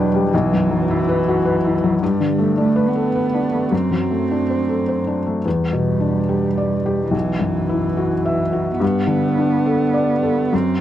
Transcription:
Already playing: felt piano E2 B2 G3 D4 B4 G5, cello F#3
0.14 felt piano G3
0.33 felt piano B1, cello E3
0.53 felt piano F#2
0.71 felt piano F#3
0.91 felt piano E4
1.09 felt piano B4
1.28 felt piano F#4
1.45 felt piano B4
1.65 felt piano E4
1.84 felt piano F#3
2.03 felt piano G2, cello G3
2.20 felt piano D3
2.38 felt piano A3
2.57 cello A3, felt piano D4
2.76 felt piano B4
2.88 cello B3
2.95 felt piano A4
3.16 felt piano B4
3.34 felt piano D4
3.52 felt piano A3
3.71 felt piano F#2
3.75 cello C4
3.91 felt piano F#3
4.11 felt piano A3
4.31 felt piano D4
4.50 felt piano C5
4.69 felt piano A4
4.89 felt piano C5
5.07 felt piano D4
5.27 felt piano A3
5.45 felt piano E2, cello G3
5.73 felt piano B2
6.00 felt piano D4
6.29 felt piano G4
6.58 felt piano D5
6.86 felt piano G4
7.11 felt piano B1, cello E3
7.39 felt piano F#2
7.69 felt piano E4
7.97 felt piano F#4
8.25 felt piano E5
8.53 felt piano F#4
8.80 felt piano G2, cello B3
9.07 felt piano D3
9.38 felt piano D4
9.66 felt piano A4
9.94 felt piano D5
10.23 felt piano A4
10.53 felt piano F#2, cello C4

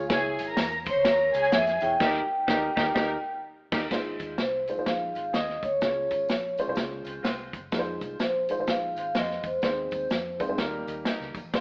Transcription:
0.09 fingered electric bass C#2, upright piano E4 G#4 C#5, violin section G#4 G#5, kick, snare, closed hi-hat, tambourine
0.39 fingered electric bass G#1, closed hi-hat, tambourine
0.49 violin section A#4 A#5
0.57 fingered electric bass E2, snare, closed hi-hat, tambourine
0.86 violin section C5 C6, kick, closed hi-hat, tambourine
0.90 vibraphone C#5
0.96 fingered electric bass C#2
1.05 fingered electric bass D#2, violin section A#4 A#5, kick, snare, closed hi-hat, tambourine
1.34 fingered electric bass C#2, violin section G#4 G#5, closed hi-hat, tambourine
1.44 closed hi-hat
1.52 fingered electric bass F2, vibraphone E5, snare, closed hi-hat, tambourine
1.67 snare, closed hi-hat
1.80 fingered electric bass E2, upright piano E4 G#4 C#5, vibraphone G5, closed hi-hat, tambourine
2.00 fingered electric bass D#2, horn section G3 A#3 D#4 A#4, upright piano D#4 A#4, kick, snare, crash
2.06 upright piano G4
2.47 fingered electric bass D#2, horn section G3 A#3 D#4 A#4, upright piano D#4 A#4, kick, snare
2.54 upright piano G4
2.76 fingered electric bass D#2, horn section G3 A#3 D#4 A#4, upright piano D#4 A#4, kick, snare
2.83 upright piano G4
2.95 fingered electric bass D#2, horn section G3 A#3 D#4 A#4, upright piano D#4 G4 A#4, kick, snare
3.72 fingered electric bass D#2, horn section G3 A#3 D#4 A#4, upright piano D#4 G4 A#4, kick, snare, crash
3.91 fingered electric bass G#1, upright piano G#3 D#4 F4 C5, kick, snare, closed hi-hat, tambourine
4.19 fingered electric bass D#2, kick, closed hi-hat, tambourine
4.38 fingered electric bass C2, vibraphone C5, snare, closed hi-hat, tambourine
4.67 upright piano G#3 D#4 F4 C5, closed hi-hat, tambourine
4.77 fingered electric bass G#1, upright piano G#3 D#4 F4 C5
4.86 fingered electric bass A#1, vibraphone F5, kick, snare, closed hi-hat, tambourine
5.15 fingered electric bass G#1, horn section G#3 C4 F4 C5, closed hi-hat, tambourine
5.34 fingered electric bass D#2, horn section C4 D#4 G#4 D#5, vibraphone D#5, snare, closed hi-hat, tambourine
5.49 snare
5.63 fingered electric bass D2, vibraphone C#5, kick, closed hi-hat, tambourine
5.81 fingered electric bass C#2, upright piano G#3 C#4 F4 C#5, kick, snare, closed hi-hat, tambourine
6.11 fingered electric bass G#1, kick, closed hi-hat, tambourine
6.28 fingered electric bass A#1, snare, closed hi-hat, tambourine
6.58 upright piano G#3 C#4 F4 C5, closed hi-hat, tambourine
6.67 fingered electric bass C2, upright piano G#3 C#4 E4 C5
6.74 fingered electric bass C#2, upright piano F4, kick, snare, closed hi-hat, tambourine
7.05 fingered electric bass C#2, horn section G#3 C4 F4 C5, closed hi-hat, tambourine
7.23 fingered electric bass C2, horn section G#3 C4 F4 C5, snare, closed hi-hat, tambourine
7.53 fingered electric bass F#1, kick, closed hi-hat, tambourine
7.72 fingered electric bass F2, upright piano G#3 D#4 F4 A#4, kick, snare, closed hi-hat, tambourine
7.79 upright piano C5
8.01 fingered electric bass C2, kick, closed hi-hat, tambourine
8.20 fingered electric bass A#1, vibraphone C5, snare, closed hi-hat, tambourine
8.49 upright piano G#3 D#4 F4 C5, closed hi-hat, tambourine
8.58 fingered electric bass G#1, upright piano G#3 D#4 F4 C5
8.67 fingered electric bass A#1, vibraphone F5, kick, snare, closed hi-hat, tambourine
8.96 fingered electric bass G#1, horn section G#3 C4 F4 C5, vibraphone F5, closed hi-hat, tambourine
9.15 fingered electric bass F2, horn section G#3 C4 F4 C5, vibraphone D#5, snare, closed hi-hat, tambourine
9.30 snare
9.43 fingered electric bass E2, vibraphone C5, kick, closed hi-hat, tambourine
9.62 fingered electric bass D#2, upright piano G#3 C4 D#4 C5, kick, snare, closed hi-hat, tambourine
9.91 fingered electric bass D#2, kick, closed hi-hat, tambourine
10.10 fingered electric bass F2, snare, closed hi-hat, tambourine
10.39 upright piano G#3 C4 D#4 C5, kick, closed hi-hat, tambourine
10.48 fingered electric bass G2, upright piano G#3 C4 D#4 C5
10.57 fingered electric bass D#2, upright piano G3 A#3 D#4 A#4, kick, snare, closed hi-hat, tambourine
10.87 fingered electric bass D#2, horn section G3 A#3 D#4 A#4, closed hi-hat, tambourine
11.05 horn section G3 A#3 D#4 A#4, snare, closed hi-hat, tambourine
11.20 fingered electric bass C#2, snare
11.35 fingered electric bass A#1, kick, closed hi-hat, tambourine
11.44 fingered electric bass A1
11.53 fingered electric bass G#1, upright piano G#3 D#4 F4 C5, violin section C5 C6, kick, snare, closed hi-hat, tambourine

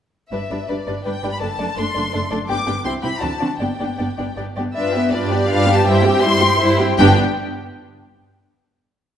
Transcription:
0.31 double bass section G1, cello section G2, viola section G3 D4, violin section B4 D5 E5
0.50 double bass section G1, cello section G2, viola section G3 D4, violin section B4 D5
0.68 double bass section G1, cello section G2, viola section G3 D4, violin section B4 D5
0.86 double bass section G1, cello section G2, viola section G3 D4, violin section B4 D5
1.05 double bass section G1, cello section G2, viola section G3 D4, violin section B4 D5 G5
1.22 double bass section G1, cello section G2, viola section G3 D4, violin section B4 D5
1.33 violin section B5
1.40 double bass section F#1, cello section F#2, viola section A3 D4, violin section A4 D5 A5
1.58 double bass section F#1, cello section F#2, viola section A3 D4, violin section A4 D5
1.76 double bass section F#1, cello section F#2, viola section A3 D4, violin section A4 D5 C6
1.95 double bass section F#1, cello section F#2, viola section A3 D4, violin section A4 D5
2.12 double bass section F#1, cello section F#2, viola section A3 D4, violin section A4 D5
2.31 double bass section F#1, cello section F#2, viola section A3 D4, violin section A4 D5
2.49 double bass section G1, cello section G2, viola section B3 D4, violin section G4 G5 D6
2.66 double bass section G1, cello section G2, viola section B3 D4, violin section G4 G5
2.84 double bass section C2, cello section C3, viola section C4 E4, violin section G4 G5 C6
3.02 double bass section C2, cello section C3, viola section C4 E4, violin section G4 G5 B5
3.21 double bass section D2, cello section D3, viola section C4 D4, violin section F#4 D5 A5
3.40 double bass section D2, cello section D3, viola section C4 D4, violin section F#4 D5
3.60 double bass section G1, cello section G2, viola section B3 D4, violin section G4 D5 G5
3.80 double bass section G1, cello section G2, viola section B3 D4, violin section G4 D5
3.98 double bass section G1, cello section G2, viola section B3 D4, violin section G4 D5
4.18 double bass section G1, cello section G2, viola section B3 D4, violin section G4 D5
4.37 double bass section G1, cello section G2, viola section B3 D4, violin section G4 D5
4.56 double bass section G1, cello section G2, viola section B3 D4, violin section G4 D5
4.75 double bass section G2, viola section D4 F4, violin section B4 D5 E5
4.94 viola section B3 D4, violin section G4 B4
5.13 double bass section G2, viola section D4 F4, cello section G4, violin section B4 D5
5.31 viola section B3 D4, violin section G4 B4
5.49 double bass section G2, viola section D4 F4, violin section B4 D5 F5
5.68 viola section B3 D4, violin section G4 B4
5.76 violin section A5
5.85 double bass section G2, viola section G3 E4, violin section C5 E5 G5
6.04 viola section C4 G4, violin section G4 G5
6.21 double bass section G2, viola section G3 E4, violin section C5 E5 C6
6.40 viola section C4 G4, violin section G4 G5
6.59 double bass section G2, viola section G3 E4, cello section E4, violin section C5 E5
6.79 viola section C4 G4, violin section G4 G5
6.98 double bass section G1, cello section G2, viola section B3 D4, violin section G4 G5

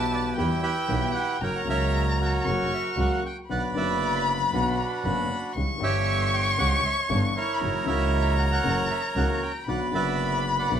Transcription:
Already playing: grand piano B1 B2 E3 G3 B3 G4, double bass B1, bandoneon G4 B4 E5, violin A5
0.13 bandoneon D5
0.36 grand piano E2 E3 G3 B3 G4, double bass E2, bandoneon E4 G4 B4, violin G5
0.63 bandoneon G4 B4 E5
0.88 grand piano B1 B2 E3 G3 B3 G4, double bass B1
1.15 bandoneon F#5
1.41 double bass F#1, grand piano F#2 C#3 F#3 A#3 F#4, bandoneon A#4 C#5 G5, violin A#5
1.56 bandoneon F#5
1.66 double bass C#2, grand piano C#2 C#3 F#3 A#3 F#4, bandoneon A#4 C#5 E5
2.08 bandoneon D5
2.21 bandoneon F#4 A#4 C#5
2.44 double bass F#1, grand piano F#2 C#3 F#3 A#3 F#4, violin C#6
2.74 bandoneon E5
2.97 grand piano C#2 C#3 F#3 A#3 F#4, double bass C#2, bandoneon F#5
3.26 bandoneon G5
3.48 grand piano B1 B2 D3 F#3 B3 F#4, double bass B1, bandoneon B4 D5 F#5, violin B5
3.74 grand piano F#1 F#2 D3 F#3 B3, double bass F#1, bandoneon B4 E5
3.78 grand piano F#4
4.28 bandoneon D5
4.53 double bass B1, grand piano B1 B2 D3 F#3 B3 F#4, bandoneon D4 F#4 B4
5.03 grand piano F#1 F#2 D3 F#3 B3 F#4, double bass F#1, violin B5
5.56 grand piano C#2 C#3 E3 G3 C#4 G4, double bass C#2, violin C#6
5.78 grand piano G1 G2 E3 G3 C#4 G4, double bass G1
5.83 bandoneon G4 C#5 E5
6.33 bandoneon G5
6.58 grand piano C#2 C#3 E3 G3 C#4 G4, double bass C#2, bandoneon C#5 F#5
6.86 bandoneon E5
7.09 grand piano G1 G2 E3 G3 C#4 G4, double bass G1, bandoneon C#5
7.36 bandoneon E4 A#4 C#5
7.54 violin B5
7.60 double bass F#1, grand piano F#2 E3 F#3 A#3 C#4 F#4, violin A#5
7.84 grand piano C#2 C#3 E3 A#3 C#4 F#4, double bass C#2, bandoneon A#4 C#5 E5
8.39 bandoneon F#5
8.52 bandoneon A#4 C#5 F#5
8.64 double bass F#1, grand piano F#2 E3 F#3 A#3 C#4 F#4
8.91 bandoneon E5
9.16 double bass C#2, grand piano C#2 C#3 E3 A#3 C#4 F#4, bandoneon F#5
9.43 bandoneon G5
9.67 double bass B1, grand piano B1 B2 D3 F#3 B3 F#4, bandoneon B4 D5 F#5, violin B5
9.91 double bass F#1, grand piano F#1 F#2 D3 F#3 B3, bandoneon B4 E5
9.96 grand piano F#4
10.47 bandoneon D5
10.59 bandoneon B4 D5 F#5
10.70 grand piano B1 B2 D3 F#3 B3 F#4, double bass B1

